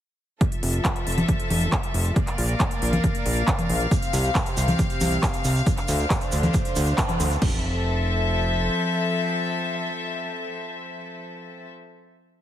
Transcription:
0.41 string section F3 F4 A4 E5, kick, closed hi-hat
0.52 closed hi-hat
0.63 analog synth bass F1, open hi-hat
0.74 closed hi-hat
0.85 kick, clap, closed hi-hat
0.96 closed hi-hat
1.07 analog synth bass F1, open hi-hat
1.12 closed hi-hat
1.18 closed hi-hat, high conga
1.28 kick, closed hi-hat
1.40 closed hi-hat
1.50 analog synth bass F1, open hi-hat, high conga
1.61 closed hi-hat
1.72 kick, clap, closed hi-hat
1.83 closed hi-hat
1.94 analog synth bass F1, open hi-hat
2.05 closed hi-hat
2.16 string section A#3 A#4 D5 F5, kick, closed hi-hat
2.27 clap, closed hi-hat
2.38 analog synth bass A#1, open hi-hat
2.49 closed hi-hat
2.60 kick, clap, closed hi-hat
2.71 closed hi-hat
2.82 analog synth bass A#1, open hi-hat
2.87 closed hi-hat
2.93 closed hi-hat, high conga
3.04 kick, closed hi-hat
3.15 closed hi-hat
3.26 analog synth bass A#1, open hi-hat
3.37 closed hi-hat
3.48 kick, clap, closed hi-hat
3.59 closed hi-hat, high conga
3.69 analog synth bass A#1, open hi-hat
3.80 closed hi-hat
3.91 string section C3 C4 G4, kick, closed hi-hat, shaker
4.02 closed hi-hat, shaker
4.13 analog synth bass C2, open hi-hat, shaker
4.24 closed hi-hat, shaker
4.35 kick, clap, closed hi-hat, shaker
4.46 closed hi-hat, shaker
4.57 analog synth bass C2, open hi-hat, shaker
4.63 closed hi-hat
4.68 closed hi-hat, high conga, shaker
4.79 kick, closed hi-hat, shaker
4.90 closed hi-hat, shaker
5.01 analog synth bass C2, open hi-hat, high conga, shaker
5.12 closed hi-hat, shaker
5.23 kick, clap, closed hi-hat, shaker
5.33 closed hi-hat, shaker
5.45 analog synth bass C2, open hi-hat, shaker
5.56 closed hi-hat, shaker
5.67 string section D3 D4 C5, kick, closed hi-hat, shaker
5.77 clap, closed hi-hat, shaker
5.88 analog synth bass D2, open hi-hat, shaker
5.99 closed hi-hat, shaker
6.10 kick, clap, closed hi-hat, shaker
6.21 closed hi-hat, shaker
6.32 analog synth bass D2, open hi-hat, shaker
6.38 closed hi-hat
6.43 closed hi-hat, high conga, shaker
6.54 kick, closed hi-hat, shaker
6.65 closed hi-hat, shaker
6.76 analog synth bass D2, open hi-hat, shaker
6.86 closed hi-hat, shaker
6.98 kick, clap, closed hi-hat, shaker
7.08 closed hi-hat, high conga, shaker
7.20 analog synth bass D2, open hi-hat, shaker
7.31 closed hi-hat, shaker
7.42 analog synth bass F1, string section F3 C4 A4 E5, kick, crash

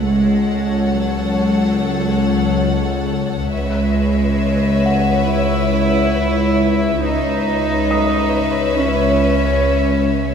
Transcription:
0.06 synth drone C#2, double bass section C#2, cello section G#3, violin section A4 C#5 F#5
0.92 cello section F#3
3.51 double bass section C#2, synth drone C#2, cello section G#3, violin section B4 C#5 E5
4.86 felt piano F#5
5.30 cello section E4
7.03 synth drone C#2, double bass section C#2, cello section D#4, violin section B4 C#5 E5
7.91 felt piano D#6
8.79 cello section C#4

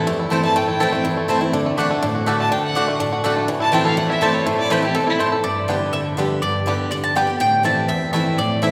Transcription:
Already playing: five-string banjo E4 A4
0.07 steel-string acoustic guitar E2, five-string banjo A3
0.19 five-string banjo E4
0.30 steel-string acoustic guitar E3 A3 C4 E4, mandolin A3 E4 C5 A5, five-string banjo A4
0.43 steel-string acoustic guitar C4 E4, five-string banjo E4, fiddle A5
0.56 steel-string acoustic guitar A2, five-string banjo A3, fiddle G5
0.68 five-string banjo E4, fiddle G5
0.80 steel-string acoustic guitar E3 A3 C4 E4, mandolin A3 E4 C5 A5, five-string banjo A4
0.92 five-string banjo A3, steel-string acoustic guitar C4 E4
1.04 steel-string acoustic guitar E2, five-string banjo E4
1.17 five-string banjo A3
1.28 steel-string acoustic guitar E3 A3 C4 E4, mandolin A3 E4 C5 A5, five-string banjo E4
1.41 steel-string acoustic guitar C4 E4, five-string banjo E4
1.53 steel-string acoustic guitar D3, five-string banjo D4
1.66 five-string banjo A3
1.77 steel-string acoustic guitar D3 A3 D4 F#4, mandolin A3 F#4 D5 F#5, five-string banjo F#4
1.91 five-string banjo A3
2.03 steel-string acoustic guitar A2, five-string banjo D4
2.15 five-string banjo F#4
2.26 steel-string acoustic guitar D3 A3 D4 F#4, mandolin A3 F#4 D5 F#5, five-string banjo A4
2.40 five-string banjo A3, fiddle A5
2.52 steel-string acoustic guitar D3, five-string banjo D4, fiddle G5
2.64 fiddle F#5
2.75 steel-string acoustic guitar D3 A3 D4 F#4, mandolin A3 F#4 D5 F#5, five-string banjo F#4
2.88 five-string banjo A3
3.00 steel-string acoustic guitar A2, five-string banjo D4
3.13 five-string banjo F#4
3.24 steel-string acoustic guitar D3 A3 D4 F#4, mandolin A3 F#4 D5 F#5, five-string banjo A4
3.37 five-string banjo A3
3.48 steel-string acoustic guitar A2, five-string banjo E3
3.60 five-string banjo E4, fiddle A5
3.72 steel-string acoustic guitar E3 A3 C4 E4, mandolin A3 E4 C5 A5, five-string banjo E4, fiddle G5
3.85 five-string banjo A4, fiddle F5
3.97 steel-string acoustic guitar E2, five-string banjo A3, fiddle F#5
4.10 five-string banjo E4, fiddle E5
4.21 steel-string acoustic guitar E3 A3 C4 E4, mandolin A3 E4 C5 A5, five-string banjo A4, fiddle D5
4.34 five-string banjo E4, fiddle C#5
4.46 steel-string acoustic guitar A2, five-string banjo A3, fiddle C5
4.58 five-string banjo E4, fiddle D5
4.70 steel-string acoustic guitar E3 A3 C4 E4, mandolin A3 E4 C5 A5, five-string banjo A3, fiddle B4
4.82 steel-string acoustic guitar C4 E4, five-string banjo E4, fiddle G4
4.95 steel-string acoustic guitar B2, five-string banjo A4, fiddle A4
5.07 five-string banjo E4, fiddle E4
5.19 steel-string acoustic guitar A2, mandolin A3 E4 C5 A5, five-string banjo E4
5.32 five-string banjo A4
5.44 steel-string acoustic guitar G2, mandolin D5
5.68 steel-string acoustic guitar D3 G3 B3 G4, five-string banjo B3 D4 G4
5.93 steel-string acoustic guitar D3, mandolin E5
6.17 steel-string acoustic guitar D3 G3 B3 G4, five-string banjo B3 D4 G4
6.42 steel-string acoustic guitar G2, mandolin D5
6.66 steel-string acoustic guitar D3 G3 B3 G4, five-string banjo B3 D4 G4
6.91 steel-string acoustic guitar D3, mandolin D5
7.04 mandolin A5
7.15 steel-string acoustic guitar D3 G3 B3 G4, five-string banjo B3 D4 G4, mandolin G5
7.27 steel-string acoustic guitar B3 G4
7.40 steel-string acoustic guitar A2, mandolin G5
7.63 steel-string acoustic guitar E3 A3 C4 E4, five-string banjo A3 E4, mandolin A5
7.88 steel-string acoustic guitar E2, mandolin E5
8.13 steel-string acoustic guitar E3 A3 C4 E4, five-string banjo A3 E4, mandolin E5
8.38 steel-string acoustic guitar A2, mandolin D5
8.62 steel-string acoustic guitar E3 A3 C4 E4, five-string banjo A3 E4, mandolin E5

